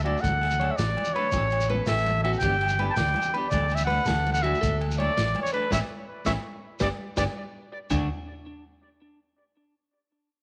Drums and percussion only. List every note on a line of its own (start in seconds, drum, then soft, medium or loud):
0.05 ride medium
0.05 low agogo medium
0.17 shekere soft
0.24 kick loud
0.24 ride medium
0.24 high conga medium
0.24 low conga medium
0.24 shekere medium
0.41 snare soft
0.41 ride medium
0.41 low agogo medium
0.51 low conga medium
0.51 shekere medium
0.61 ride medium
0.61 low conga soft
0.61 low agogo medium
0.78 snare medium
0.78 ride medium
0.78 low conga loud
0.78 shekere loud
0.90 low conga soft
0.97 ride soft
0.97 high conga loud
0.97 low agogo medium
1.05 low conga medium
1.05 shekere medium
1.16 ride medium
1.25 low conga soft
1.32 kick medium
1.32 ride medium
1.32 high conga medium
1.32 low conga medium
1.32 low agogo medium
1.32 shekere loud
1.50 ride medium
1.50 low agogo medium
1.50 shekere soft
1.60 low conga medium
1.60 shekere medium
1.69 ride medium
1.69 high conga loud
1.86 snare medium
1.86 ride medium
1.86 low conga medium
1.86 low agogo medium
1.86 shekere loud
1.98 shekere soft
2.06 ride medium
2.06 high conga loud
2.06 shekere soft
2.16 low conga medium
2.24 ride medium
2.24 low agogo medium
2.33 shekere soft
2.41 kick loud
2.41 ride medium
2.41 high conga medium
2.41 low conga medium
2.41 shekere loud
2.61 ride medium
2.61 low agogo medium
2.69 low conga medium
2.69 shekere medium
2.79 ride medium
2.79 high conga medium
2.79 low conga soft
2.79 low agogo medium
2.96 snare medium
2.96 ride medium
2.96 low conga loud
2.96 shekere loud
3.05 low conga soft
3.05 shekere soft
3.14 ride medium
3.14 high conga loud
3.14 low agogo medium
3.22 low conga medium
3.22 shekere medium
3.34 ride medium
3.44 low conga soft
3.51 kick medium
3.51 ride medium
3.51 high conga loud
3.51 low conga loud
3.51 low agogo medium
3.51 shekere loud
3.69 ride medium
3.69 low agogo medium
3.69 shekere soft
3.77 low conga medium
3.77 shekere medium
3.89 ride medium
3.89 high conga medium
4.05 snare loud
4.05 ride medium
4.05 low conga medium
4.05 low agogo medium
4.05 shekere loud
4.15 shekere soft
4.26 ride medium
4.26 high conga loud
4.26 shekere soft
4.34 low conga medium
4.34 shekere medium
4.44 ride medium
4.44 low agogo medium
4.54 shekere soft
4.63 kick medium
4.63 ride medium
4.63 high conga medium
4.63 low conga medium
4.63 shekere loud
4.81 ride medium
4.81 low agogo medium
4.90 low conga medium
4.90 shekere medium
4.98 ride medium
4.98 high conga medium
4.98 low conga soft
4.98 low agogo medium
5.17 snare medium
5.17 ride medium
5.17 low conga medium
5.17 shekere loud
5.27 low conga soft
5.35 ride medium
5.35 high conga medium
5.35 low agogo medium
5.45 low conga medium
5.45 shekere medium
5.54 ride medium
5.63 low conga soft
5.71 kick medium
5.71 snare medium
5.71 high conga loud
5.71 low agogo loud
5.71 shekere loud
6.25 kick medium
6.25 snare medium
6.25 high conga loud
6.25 low agogo loud
6.25 shekere loud
6.80 kick medium
6.80 snare medium
6.80 high conga loud
6.80 low agogo loud
6.80 shekere loud
7.17 kick medium
7.17 snare medium
7.17 high conga loud
7.17 low agogo loud
7.17 shekere loud
7.90 kick medium
7.90 floor tom medium
7.90 china medium
7.90 high conga medium
7.90 low agogo loud
7.90 shekere medium